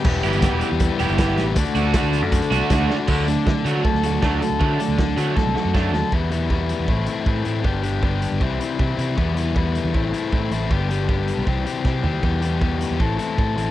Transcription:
<<
  \new Staff \with { instrumentName = "Transistor combo organ" } { \time 4/4 \key d \mixolydian \tempo 4 = 157 <g' b' e'' b''>1 | <fis' a' d'' a''>1 | r1 | r1 |
r1 | r1 | r1 | r1 |
r1 | }
  \new Staff \with { instrumentName = "Overdriven electric guitar" } { \time 4/4 \key d \mixolydian <e, b, e g b g'>4 <e g b g'>4. <e g b g'>8 <e, b, e g b g'>8 <e g b g'>8 | <d a d' fis'>4 <d a d' fis'>4. <a d' fis'>8 <d a d' fis'>8 <a d' fis'>8 | d8 d'8 d8 fis'8 a'8 fis'8 d'8 a'8 | d8 d'8 d8 fis'8 a'8 fis'8 d'8 a'8 |
<e, b, e g b e'>8 <e g b e'>8 <e, b, e g b e'>4 <a, e a c' e'>8 <a c' e'>8 <e a c' e'>8 <a c' e'>8 | <g, d g b d' g'>8 <g b d' g'>8 <g, d g b d' g'>4 <c e g c' e'>8 <g c' e'>8 <e g c' e'>8 <g c' e'>8 | <e, b, e g b e'>8 <e g b e'>8 <e, b, e g b e'>4 <a, e a c' e'>8 <a c' e'>8 <e a c' e'>8 <a c' e'>8 | <g, d g b d' g'>8 <g b d' g'>8 <g, d g b d' g'>4 <c e g c' g'>8 <g c' g'>8 <e g c' g'>8 <g c' g'>8 |
<e, b, e g b g'>8 <e g b g'>8 <e, b, e g b g'>4 <a, e c' e' a'>8 <c' e' a'>8 <e c' e' a'>8 <c' e' a'>8 | }
  \new Staff \with { instrumentName = "Overdriven electric guitar" } { \time 4/4 \key d \mixolydian r8 <e b e' g'>8 <e b e' g'>8 r4 <e b e' g'>8 <e b e' g'>8 r8 | r8 <a d' fis'>8 <a d' fis'>8 r4 <a d' fis'>8 <a d' fis'>8 r8 | <fis a d'>8 <fis a>8 <fis a>8 <fis a d'>8 <fis a>8 <fis a>8 <fis a d'>8 <fis a>8 | <fis a d'>8 <fis a>8 <fis a>8 <fis a d'>8 <fis a>8 <fis a>8 <fis a d'>8 <fis a>8 |
r1 | r1 | r1 | r1 |
r1 | }
  \new Staff \with { instrumentName = "Fingered electric bass" } { \clef bass \time 4/4 \key d \mixolydian e,,8 g,,8. e,,16 r16 e,8 r16 e,,16 g,,8. a,,8 | d,16 r16 d,8 r16 d,8 fis,8 r16 c,16 r16 d,8 r8 | d,8. d8 r16 d8 r16 d,8. d,8 r16 d,16 | d8 r16 d,8. d8 r16 c,16 r16 fis,8. ees,16 r16 |
e,4.~ e,16 e,16 a,,8 r8 a,8 a,8 | g,,4.~ g,,16 g,,16 c,8 r8 c8 c8 | e,4.~ e,16 e,16 a,,8 r8 a,8 a,,8 | g,,4.~ g,,16 b,,16 c,8 r8 c8 ees,8 |
e,4.~ e,16 e,16 a,,8 r8 a,8 a,,8 | }
  \new DrumStaff \with { instrumentName = "Drums" } \drummode { \time 4/4 <cymc bd>8 hh16 hh16 <hh bd sn>8 hh8 <hh bd>8 hh16 hh16 <hh bd sn>8 <hh sn>8 | <hh bd>16 hh16 hh8 <hh bd sn>8 hh8 <hh bd>16 hh16 hh8 <hh bd sn>8 sn8 | <cymc bd>8 hh8 <bd sn>8 hh8 bd16 sn16 hh8 <bd sn>8 hh8 | bd8 hh8 <bd sn>8 hh8 <bd sn>8 sn8 <bd sn>8 sn8 |
bd8 hh8 bd8 hh8 bd8 hh8 bd8 hh8 | bd8 hh8 bd8 hh8 bd8 hh8 bd8 hh8 | bd8 hh8 bd8 hh8 bd8 hh8 bd8 hh8 | bd8 hh8 bd8 hh8 bd8 hh8 <bd sn>8 tomfh8 |
bd8 hh8 bd8 hh8 bd8 hh8 bd8 hh8 | }
>>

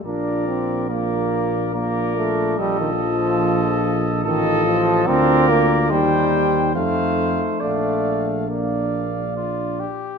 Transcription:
<<
  \new Staff \with { instrumentName = "Cornet" } { \time 3/4 \key bes \major \tempo 4 = 71 d''4 d''4 d''4 | ees''2 ees''4 | d''4 g''4 f''4 | f''4 f''4 f'8 g'8 | }
  \new Staff \with { instrumentName = "Trumpet" } { \time 3/4 \key bes \major bes'4 bes'4 bes'4 | a'2 a'4 | bes'4 c''4 c''4 | d''4 d''4. r8 | }
  \new Staff \with { instrumentName = "French horn" } { \time 3/4 \key bes \major f'4 f'4 f'4 | f'2 f'4 | f'4 ees'4 ees'4 | d'4 d'4. r8 | }
  \new Staff \with { instrumentName = "Trombone" } { \time 3/4 \key bes \major d'8 c'8 bes4 bes8 a8 | g16 ees16 f4~ f16 r16 ees8 f8 | c'8 bes8 g4 a4 | a4 bes4 r4 | }
  \new Staff \with { instrumentName = "Tuba" } { \clef bass \time 3/4 \key bes \major bes,,2. | bes,,2 a,,4 | d,4 ees,4 f,4 | bes,,2~ bes,,8 r8 | }
>>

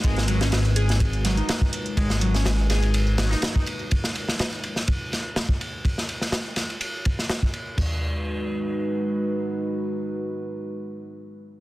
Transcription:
<<
  \new Staff \with { instrumentName = "Analog synth pad" } { \time 4/4 \key gis \minor \tempo 4 = 124 <gis dis' fis' b'>1~ | <gis dis' fis' b'>1~ | <gis dis' fis' b'>1~ | <gis dis' fis' b'>1 |
<gis dis' fis' b'>1~ | <gis dis' fis' b'>1 | }
  \new Staff \with { instrumentName = "Analog synth lead" } { \time 4/4 \key gis \minor gis16 r16 fis16 cis'16 r8 gis'16 r8. fis16 dis'16 r4 | gis16 r16 fis16 cis'16 r8 gis'16 r8. fis16 dis'16 r4 | r1 | r1 |
r1 | r1 | }
  \new Staff \with { instrumentName = "Analog synth bass" } { \clef bass \time 4/4 \key gis \minor gis,,2. r4 | gis,,2. r4 | r1 | r1 |
r1 | r1 | }
  \new DrumStaff \with { instrumentName = "Drums" } \drummode { \time 4/4 <hh bd cymr>16 <hh sn>16 <hh cymr>16 <hh sn>16 <hh cymr sn>16 <hh cymr>16 <hh cymr>16 <hh sn>16 <hh bd cymr>16 hh16 <hh cymr sn>16 hh16 <hh cymr sn>16 <hh bd>16 <hh cymr>16 hh16 | <hh bd cymr>16 <hh sn>16 <hh cymr>16 <hh sn>16 <hh cymr sn>16 hh16 <hh cymr sn>16 <hh cymr>16 <hh cymr>16 hh16 <hh cymr sn>16 <hh sn>16 <hh cymr sn>16 <hh bd>16 <hh cymr>16 hh16 | <hh bd cymr>16 <hh sn>16 <hh cymr>16 <hh sn>16 <hh cymr sn>16 <hh cymr>16 <hh cymr>16 <hh sn>16 <hh bd cymr>16 hh16 <hh cymr sn>16 hh16 <cymr sn>16 bd16 <hh cymr>16 hh16 | <hh bd cymr>16 <hh sn>16 <hh cymr>16 <hh sn>16 <cymr sn>8 <hh cymr sn>16 <hh cymr>16 <hh cymr>16 hh16 <hh bd cymr>16 <hh sn>16 <cymr sn>16 bd16 <hh cymr>16 hh16 |
<cymc bd tomfh>4 r4 r4 r4 | r4 r4 r4 r4 | }
>>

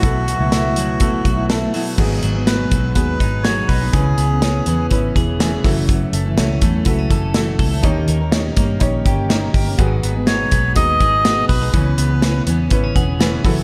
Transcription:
<<
  \new Staff \with { instrumentName = "Melodica" } { \time 4/4 \key gis \phrygian \tempo 4 = 123 fis'2. r4 | r4 b'4 b'4 cis''8 b'8 | gis'2 r2 | r1 |
r1 | r4 cis''4 dis''4. b'8 | b'4. r2 r8 | }
  \new Staff \with { instrumentName = "Upright piano" } { \time 4/4 \key gis \phrygian << { r2 r8 fis''8 a''4 | r1 | r1 | r1 |
r1 | r1 | r2 r8 fis''8 gis''8 b''8 | } \\ { <b e' a'>8. r16 <b e' a'>8. r16 <b e' a'>8. r16 <b e' a'>8. r16 | <b fis' gis'>8. r16 <b fis' b'>8. r16 <b fis' gis'>8. r16 <b fis' gis'>8. r16 | <cis' e' b'>8. r16 <cis' e' b'>8. r16 <cis' e' b'>8. r16 <cis' e' gis'>8 <e' fis' a'>8~ | <e' fis' a'>8 r8 <e' fis' a'>8. r16 <e' fis' a'>8. r16 <e' fis' a'>8. r16 |
<dis' g' cis''>8. r16 <dis' g' cis''>8. r16 <dis' g' cis''>8. r16 <dis' g' cis''>8. r16 | <fis' gis' b'>8. r16 <fis' gis' b'>8. r16 <fis' gis' b'>8. r16 <fis' gis' b'>8. r16 | <cis' e' b'>8. r16 <cis' e' b'>8. r16 <cis' e' b'>8. r16 <cis' e' b'>8 <e' fis' a'>8 | } >> }
  \new Staff \with { instrumentName = "Clean electric guitar" } { \time 4/4 \key gis \phrygian <b, fis a e'>8 fis8 e'8 fis8 a8 fis8 a8 fis8 | gis,8 fis8 b8 fis8 b8 dis'8 fis8 dis'8 | cis8 b8 cis'8 b8 cis'8 gis'8 b8 fis,8 | fis,8 a8 cis'8 a8 b16 cis'16 a'8 a8 a'8 |
dis8 ais8 cis'8 ais8 cis'8 g'8 ais8 g'8 | gis,8 b8 dis'8 b8 dis'8 gis'8 b8 fis'16 gis'16 | cis8 b8 cis'8 b8 b16 cis'16 gis'8 b8 fis,8 | }
  \new Staff \with { instrumentName = "Steel-string acoustic guitar" } { \time 4/4 \key gis \phrygian <fis e'>8. <b, fis a e'>8. <b, fis a e'>8 <b, fis a e'>8. <fis a e'>8. <b, fis a e'>8 | <gis, dis fis b dis' gis'>8. <fis b dis' gis'>8. <fis b dis' gis'>4 <fis b dis' gis'>8 <fis b dis' gis'>8. <fis b dis' gis'>16 | <cis e b cis' gis'>8. <b cis' gis'>8. <e b cis' gis'>4 <e b cis' gis'>8 <e b cis' gis'>8 <fis, cis e a cis' a'>8~ | <fis, cis e a cis' a'>8. <e a cis' a'>8. <e a cis' a'>4 <e a cis' a'>8 <e a cis' a'>8. <e a cis' a'>16 |
<dis ais cis' g' ais'>8. <cis' g' ais'>8. <ais cis' g' ais'>4 <ais cis' g' ais'>8 <ais cis' g' ais'>8. <cis' g' ais'>16 | <gis, dis fis b dis' gis'>8. <fis b dis' gis'>8. <fis b dis' gis'>4 <fis b dis' gis'>8 <fis dis' gis'>8. <fis b dis' gis'>16 | <cis e b cis' gis'>8. <b cis' gis'>8. <e b cis' gis'>4 <e b cis' gis'>8 <e b cis' gis'>8 <fis, cis e a cis' a'>8 | }
  \new Staff \with { instrumentName = "Fingered electric bass" } { \clef bass \time 4/4 \key gis \phrygian b,,8. cis,4.~ cis,16 b,,4 r8 | gis,,8 gis,,4 b,,8 dis,8 gis,,4 b,,8 | cis,8 cis,4 e,8 gis,,8 e,,4 fis,,8~ | fis,,8 fis,,8 cis,8 e,8 cis,8 fis,,4 cis,8 |
dis,8 dis,4 g,8 ais,,8 g,,4 g,,8 | gis,,8 gis,,4 b,,8 dis,8 gis,,4 b,,8 | cis,8 cis,4 e,8 gis,,8 e,,4 fis,,8 | }
  \new DrumStaff \with { instrumentName = "Drums" } \drummode { \time 4/4 <hh bd>8 hh8 <hh sn>8 hh8 <hh bd>8 <hh bd>8 <hh sn>8 hho8 | <cymc bd>8 hh8 <hh sn>8 <hh bd>8 <hh bd>8 <hh bd>8 <hh sn>8 <hho bd>8 | <hh bd>8 hh8 <hh sn>8 hh8 <hh bd>8 <hh bd>8 <hh sn>8 <hho bd>8 | <hh bd>8 hh8 <hh sn>8 <hh bd>8 <hh bd>8 <hh bd>8 <hh sn>8 <hho bd>8 |
<hh bd>8 hh8 <hh sn>8 <hh bd>8 <hh bd>8 <hh bd>8 <hh sn>8 <hho bd>8 | <hh bd>8 hh8 <hh sn>8 <hh bd>8 <hh bd>8 <hh bd>8 <hh sn>8 <hho bd>8 | <hh bd>8 hh8 <hh sn>8 hh8 <hh bd>8 <hh bd>8 <hh sn>8 <hho bd>8 | }
>>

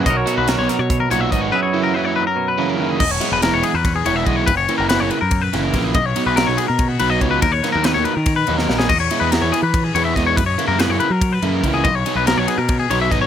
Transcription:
<<
  \new Staff \with { instrumentName = "Clean electric guitar" } { \time 7/8 \key b \major \tempo 4 = 142 dis''16 cis''8 b'16 ais'16 cis''16 ais'16 cis''8 ais'16 cis''16 e''16 dis''16 cis''16 | b'16 cis''8 ais'16 b'16 cis''16 b'16 ais'8 b'8 ais'8 gis'16 | dis''16 cis''8 b'16 ais'16 cis''16 gis'16 b'8 gis'16 cis''16 e''16 dis''16 cis''16 | b'16 cis''8 ais'16 b'16 cis''16 b'16 ais'8 b'8 ais'8 gis'16 |
dis''16 cis''8 b'16 ais'16 cis''16 gis'16 ais'8 fis'16 b'16 dis''16 cis''16 b'16 | ais'16 cis''8 ais'16 b'16 cis''16 b'16 ais'8 b'8 ais'8 gis'16 | dis''16 cis''8 b'16 ais'16 cis''16 gis'16 b'8 gis'16 cis''16 e''16 dis''16 cis''16 | b'16 cis''8 ais'16 b'16 cis''16 b'16 ais'8 b'8 ais'8 gis'16 |
dis''16 cis''8 b'16 ais'16 cis''16 gis'16 ais'8 gis'16 cis''16 e''16 dis''16 cis''16 | }
  \new Staff \with { instrumentName = "Overdriven electric guitar" } { \time 7/8 \key b \major r8 <fis b dis' fis'>8 <fis b dis' fis'>8 r4 <fis b dis' fis'>8 <fis b dis' fis'>8 | r8 <cis e ais e'>8 <cis e ais e'>8 r4 <cis e ais e'>8 <cis e ais e'>8 | r8 <e gis b e'>8 <e gis b e'>8 r4 <e gis b e'>8 <e gis b e'>8 | r8 <cis e ais e'>8 <cis e ais e'>8 r4 <cis e ais e'>8 <cis e ais e'>8 |
r8 <b, fis b dis'>8 <b, fis b dis'>8 r4 <b, fis b dis'>8 <b, fis b dis'>8 | r8 <dis fis ais dis'>8 <dis fis ais dis'>8 r4 <dis fis ais dis'>8 <dis fis ais dis'>8 | r8 <e gis b e'>8 <e gis b e'>8 r4 <e gis b e'>8 <e gis b e'>8 | r8 <cis e ais e'>8 <cis e ais e'>8 r4 <cis e ais e'>8 <cis e ais e'>8 |
r8 <b, fis b dis'>8 <b, fis b dis'>8 r4 <b, fis b dis'>8 <b, fis b dis'>8 | }
  \new Staff \with { instrumentName = "Clean electric guitar" } { \clef bass \time 7/8 \key b \major << { <fis dis' fis' ais'>8 fis'2. | <fis b e' gis'>8 e'2. | r2. r8 | r2. r8 |
r2. r8 | r2. r8 | r2. r8 | r2. r8 |
r2. r8 | } \\ { b,4 fis4 b,8 ais,8 gis,8 | fis,4 fis4 b,8 cis8 dis8 | r2. r8 | r2. r8 |
r2. r8 | r2. r8 | r2. r8 | r2. r8 |
r2. r8 | } >> }
  \new Staff \with { instrumentName = "Picked electric bass" } { \clef bass \time 7/8 \key b \major b,,8 r16 b,,8 b,,16 r16 b,8. b,,8 gis,,8 | r2. r8 | e,,8 r16 e,,8 e,,16 r16 e,8. e,,8 b,,8 | fis,,8 r16 fis,,8 fis,,16 r16 fis,8. fis,,8 ais,,8 |
b,,8 r16 b,,8 b,,16 r16 b,8. b,,8 cis,8 | dis,8 r16 dis,8 dis,16 r16 dis8. dis,8 ais,,8 | e,8 r16 e,8 e,16 r16 e8. e,8 e,8 | fis,8 r16 fis,8 fis,16 r16 fis8. fis,8 cis,8 |
b,,8 r16 b,,8 b,,16 r16 b,8. b,,8 gis,,8 | }
  \new DrumStaff \with { instrumentName = "Drums" } \drummode { \time 7/8 <hh bd>8 hh8 <hh sn>8 <hh sn>8 <hh bd>8 hh8 <hh bd>8 | r4 r4 r4. | <cymc bd>8 <cymr sn>8 <cymr sn>8 cymr8 <bd cymr sn>8 cymr8 <bd cymr>8 | <bd cymr>8 cymr8 <cymr sn>8 cymr8 <bd cymr>8 <cymr sn>8 <bd cymr sn>8 |
<bd cymr>8 cymr8 <cymr sn>8 cymr8 <bd cymr>8 cymr8 <bd cymr>8 | <bd cymr>8 <cymr sn>8 <cymr sn>8 cymr8 <bd cymr sn>8 cymr16 sn16 sn16 sn16 | <cymc bd>8 cymr8 <cymr sn>8 cymr8 <bd cymr>8 cymr8 <bd cymr sn>8 | <bd cymr>8 cymr8 <cymr sn>8 cymr8 <bd cymr>8 cymr8 <bd cymr>8 |
<bd cymr>8 cymr8 <cymr sn>8 cymr8 <bd cymr>8 cymr8 <bd cymr sn>8 | }
>>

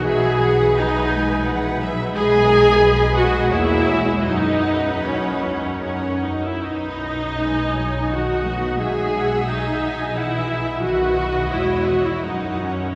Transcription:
<<
  \new Staff \with { instrumentName = "Violin section" } { \time 3/4 \key b \major \tempo 4 = 85 gis''4 dis''4 r4 | gis''4. fis''8 e''4 | dis''4 cis''4 cis''8 dis''16 e''16 | dis''2 fis''4 |
gis''4 dis''4 e''4 | fis''4 e''8 fis''16 e''16 dis''8 cis''8 | }
  \new Staff \with { instrumentName = "Violin section" } { \time 3/4 \key b \major << { e''8 fis''8 gis''4 fis''8 e''8 | dis''4 dis''8 dis''8 cis''4 | fis''2 fis''8 r8 | dis''4 gis''4 fis''8 fis''8 |
e''8 fis''8 gis''8 gis''8 fis''8 e''8 | dis''2 fis''4 | } \\ { b'2. | b'8 ais'8 b'4 cis''4 | b'2 ais'8 r8 | b'4 b'8 cis''8 dis''4 |
e''2. | b'4 cis''4 ais'4 | } >> }
  \new Staff \with { instrumentName = "Viola section" } { \time 3/4 \key b \major gis'4 dis'4 r4 | gis'4. fis'8 e'4 | dis'4 cis'4 cis'8 dis'16 e'16 | dis'2 fis'4 |
gis'4 dis'4 e'4 | fis'4 e'8 fis'16 e'16 dis'8 cis'8 | }
  \new Staff \with { instrumentName = "Cello section" } { \clef bass \time 3/4 \key b \major e4 fis8 gis8 e8 fis8 | gis4 fis8 gis8 ais8 gis8 | fis2~ fis8 r8 | r4 gis8 fis8 dis8 b8 |
gis4 fis4 e4 | dis4 gis4 fis4 | }
  \new Staff \with { instrumentName = "Double bass section" } { \clef bass \time 3/4 \key b \major b,,2. | b,,2 e,4 | fis,2~ fis,8 r8 | b,,2.~ |
b,,2. | b,,4 e,4 fis,4 | }
>>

